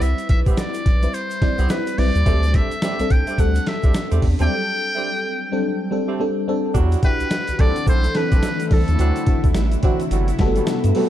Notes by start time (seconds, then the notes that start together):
Already playing: G3 C4 E4 B4
0.01 C2 E5, closed hi-hat, shaker
0.18 closed hi-hat, shaker
0.29 B1 E5, kick, closed hi-hat
0.46 G3 B3 C4 E4 G4, kick, closed hi-hat, shaker
0.52 E5
0.57 D5, snare, closed hi-hat, shaker
0.74 closed hi-hat, shaker
0.86 B1, kick, closed hi-hat
1.02 G3 C4 E4 B4, closed hi-hat, shaker
1.14 C5, closed hi-hat, shaker
1.31 closed hi-hat, shaker
1.42 C2 G3 C4 E4 D5, kick, snare, closed hi-hat
1.58 C2 G3 B3 C4 E4 G4, closed hi-hat, shaker
1.69 G3 C4 E4 B4, snare, closed hi-hat, shaker
1.87 closed hi-hat, shaker
1.98 B1 G3 C4 E4 B4 D5, open hi-hat
2.15 D#2, closed hi-hat, shaker
2.26 D2 F#3 G3 A3 C4 D4 G4 A4, kick, closed hi-hat, shaker
2.33 G3
2.43 closed hi-hat, shaker
2.54 G3 A3 C4 D4 G4 E5, kick, closed hi-hat
2.71 closed hi-hat, shaker
2.82 G3 A3 C4 D4 G4, snare, closed hi-hat, shaker
2.99 C2 G3 C4 D4 A4, closed hi-hat, shaker
3.10 C2 G5, kick, closed hi-hat
3.27 G3 A3 C4 D4 G4, closed hi-hat, shaker
3.38 D2 G3 C4 D4 A4 F#5, kick, closed hi-hat, shaker
3.55 closed hi-hat, shaker
3.66 E5, snare, closed hi-hat
3.83 C2 G3 A3 C4 D4 G4, kick, closed hi-hat, shaker
3.94 snare, closed hi-hat, shaker
4.11 E2 G3 A3 C4 D4 G4, closed hi-hat, shaker
4.22 E2, kick, open hi-hat
4.39 D#2 F#3 G3 A3 C4 D4 G4 A4 G5, closed hi-hat, shaker
4.46 G3
4.95 G3 A3 C4 D4 G4
5.52 G3 C4 D4 A4
5.91 G3 C4 D4 A4
6.07 G3 A3 C4 D4 G4
6.20 G3 C4 D4 A4
6.48 G3 C4 D4 A4
6.74 E2 D3 F#3 G3 D4 E4 F#4 F#5, kick, closed hi-hat, shaker
6.92 closed hi-hat, shaker
7.03 D4 E4 F#4 G4 B4, kick, closed hi-hat
7.20 C2, closed hi-hat, shaker
7.31 snare, closed hi-hat, shaker
7.47 C2, closed hi-hat, shaker
7.59 C2 E3 A3 C4 D4 E4 A4 D5, kick, closed hi-hat
7.76 closed hi-hat, shaker
7.87 B1 A3 C4 D4 E4 A4 C5, kick, closed hi-hat, shaker
8.04 closed hi-hat, shaker
8.15 E3 C4 D4 A4 B4, snare, closed hi-hat
8.32 B1 A3 C4 D4 E4 A4, kick, closed hi-hat, shaker
8.43 snare, closed hi-hat, shaker
8.60 closed hi-hat, shaker
8.67 B4, open hi-hat
8.71 C2 E3 C4 D4 A4, kick
8.88 D#2, closed hi-hat, shaker
8.99 D2 C3 F#3 C4 D4 E4 F#4, closed hi-hat, shaker
9.16 closed hi-hat, shaker
9.27 E3 C4 D4 F#4, kick, closed hi-hat
9.44 D2, kick, closed hi-hat, shaker
9.55 A1, snare, closed hi-hat, shaker
9.72 closed hi-hat, shaker
9.83 E3 F#3 C4 D4 E4 F#4, kick, closed hi-hat
10.00 closed hi-hat, shaker
10.11 G1 B2 F#3 G3 A3 B3 F#4, closed hi-hat, shaker
10.28 closed hi-hat, shaker
10.39 G1 G3 A3 F#4 A4, kick, snare, closed hi-hat
10.46 B3
10.56 F#3 G3 A3 B3 F#4, closed hi-hat, shaker
10.67 snare, closed hi-hat, shaker
10.84 G2, closed hi-hat, shaker
10.95 F#3 G3 A3 B3 F#4 A4, open hi-hat